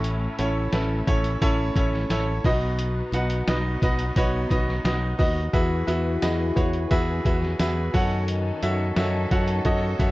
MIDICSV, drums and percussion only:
0, 0, Header, 1, 2, 480
1, 0, Start_track
1, 0, Key_signature, 4, "major"
1, 0, Tempo, 686499
1, 29, Time_signature, 4, 2, 24, 8
1, 7070, End_track
2, 0, Start_track
2, 0, Title_t, "Drums"
2, 29, Note_on_c, 9, 42, 77
2, 99, Note_off_c, 9, 42, 0
2, 270, Note_on_c, 9, 42, 70
2, 340, Note_off_c, 9, 42, 0
2, 508, Note_on_c, 9, 38, 108
2, 508, Note_on_c, 9, 42, 70
2, 578, Note_off_c, 9, 38, 0
2, 578, Note_off_c, 9, 42, 0
2, 750, Note_on_c, 9, 36, 92
2, 752, Note_on_c, 9, 42, 79
2, 820, Note_off_c, 9, 36, 0
2, 822, Note_off_c, 9, 42, 0
2, 868, Note_on_c, 9, 42, 55
2, 938, Note_off_c, 9, 42, 0
2, 989, Note_on_c, 9, 36, 91
2, 991, Note_on_c, 9, 42, 85
2, 1059, Note_off_c, 9, 36, 0
2, 1061, Note_off_c, 9, 42, 0
2, 1229, Note_on_c, 9, 36, 88
2, 1234, Note_on_c, 9, 42, 77
2, 1299, Note_off_c, 9, 36, 0
2, 1304, Note_off_c, 9, 42, 0
2, 1351, Note_on_c, 9, 38, 34
2, 1421, Note_off_c, 9, 38, 0
2, 1471, Note_on_c, 9, 38, 115
2, 1473, Note_on_c, 9, 42, 90
2, 1541, Note_off_c, 9, 38, 0
2, 1543, Note_off_c, 9, 42, 0
2, 1710, Note_on_c, 9, 36, 98
2, 1714, Note_on_c, 9, 46, 59
2, 1780, Note_off_c, 9, 36, 0
2, 1784, Note_off_c, 9, 46, 0
2, 1949, Note_on_c, 9, 42, 74
2, 2019, Note_off_c, 9, 42, 0
2, 2193, Note_on_c, 9, 42, 65
2, 2262, Note_off_c, 9, 42, 0
2, 2306, Note_on_c, 9, 42, 58
2, 2376, Note_off_c, 9, 42, 0
2, 2430, Note_on_c, 9, 38, 117
2, 2430, Note_on_c, 9, 42, 81
2, 2500, Note_off_c, 9, 38, 0
2, 2500, Note_off_c, 9, 42, 0
2, 2670, Note_on_c, 9, 36, 97
2, 2674, Note_on_c, 9, 42, 79
2, 2740, Note_off_c, 9, 36, 0
2, 2744, Note_off_c, 9, 42, 0
2, 2787, Note_on_c, 9, 42, 56
2, 2857, Note_off_c, 9, 42, 0
2, 2909, Note_on_c, 9, 36, 95
2, 2909, Note_on_c, 9, 42, 84
2, 2979, Note_off_c, 9, 36, 0
2, 2979, Note_off_c, 9, 42, 0
2, 3149, Note_on_c, 9, 36, 91
2, 3153, Note_on_c, 9, 42, 69
2, 3219, Note_off_c, 9, 36, 0
2, 3223, Note_off_c, 9, 42, 0
2, 3270, Note_on_c, 9, 38, 33
2, 3340, Note_off_c, 9, 38, 0
2, 3392, Note_on_c, 9, 38, 107
2, 3394, Note_on_c, 9, 42, 97
2, 3462, Note_off_c, 9, 38, 0
2, 3464, Note_off_c, 9, 42, 0
2, 3631, Note_on_c, 9, 36, 86
2, 3636, Note_on_c, 9, 46, 58
2, 3700, Note_off_c, 9, 36, 0
2, 3706, Note_off_c, 9, 46, 0
2, 3871, Note_on_c, 9, 36, 108
2, 3872, Note_on_c, 9, 42, 83
2, 3941, Note_off_c, 9, 36, 0
2, 3942, Note_off_c, 9, 42, 0
2, 4113, Note_on_c, 9, 42, 66
2, 4183, Note_off_c, 9, 42, 0
2, 4350, Note_on_c, 9, 54, 73
2, 4352, Note_on_c, 9, 38, 115
2, 4352, Note_on_c, 9, 42, 79
2, 4420, Note_off_c, 9, 54, 0
2, 4421, Note_off_c, 9, 38, 0
2, 4422, Note_off_c, 9, 42, 0
2, 4591, Note_on_c, 9, 36, 88
2, 4594, Note_on_c, 9, 42, 73
2, 4661, Note_off_c, 9, 36, 0
2, 4664, Note_off_c, 9, 42, 0
2, 4708, Note_on_c, 9, 42, 50
2, 4778, Note_off_c, 9, 42, 0
2, 4829, Note_on_c, 9, 42, 88
2, 4830, Note_on_c, 9, 36, 96
2, 4899, Note_off_c, 9, 42, 0
2, 4900, Note_off_c, 9, 36, 0
2, 5070, Note_on_c, 9, 36, 95
2, 5072, Note_on_c, 9, 42, 80
2, 5140, Note_off_c, 9, 36, 0
2, 5142, Note_off_c, 9, 42, 0
2, 5189, Note_on_c, 9, 38, 32
2, 5259, Note_off_c, 9, 38, 0
2, 5309, Note_on_c, 9, 38, 112
2, 5309, Note_on_c, 9, 54, 81
2, 5311, Note_on_c, 9, 42, 94
2, 5379, Note_off_c, 9, 38, 0
2, 5379, Note_off_c, 9, 54, 0
2, 5381, Note_off_c, 9, 42, 0
2, 5551, Note_on_c, 9, 36, 86
2, 5554, Note_on_c, 9, 46, 61
2, 5621, Note_off_c, 9, 36, 0
2, 5624, Note_off_c, 9, 46, 0
2, 5790, Note_on_c, 9, 42, 80
2, 5860, Note_off_c, 9, 42, 0
2, 6032, Note_on_c, 9, 42, 68
2, 6102, Note_off_c, 9, 42, 0
2, 6269, Note_on_c, 9, 38, 112
2, 6269, Note_on_c, 9, 54, 81
2, 6270, Note_on_c, 9, 42, 75
2, 6339, Note_off_c, 9, 38, 0
2, 6339, Note_off_c, 9, 54, 0
2, 6340, Note_off_c, 9, 42, 0
2, 6511, Note_on_c, 9, 36, 92
2, 6512, Note_on_c, 9, 42, 75
2, 6580, Note_off_c, 9, 36, 0
2, 6582, Note_off_c, 9, 42, 0
2, 6625, Note_on_c, 9, 42, 54
2, 6695, Note_off_c, 9, 42, 0
2, 6746, Note_on_c, 9, 42, 82
2, 6748, Note_on_c, 9, 36, 101
2, 6816, Note_off_c, 9, 42, 0
2, 6818, Note_off_c, 9, 36, 0
2, 6989, Note_on_c, 9, 36, 95
2, 6990, Note_on_c, 9, 42, 76
2, 7059, Note_off_c, 9, 36, 0
2, 7060, Note_off_c, 9, 42, 0
2, 7070, End_track
0, 0, End_of_file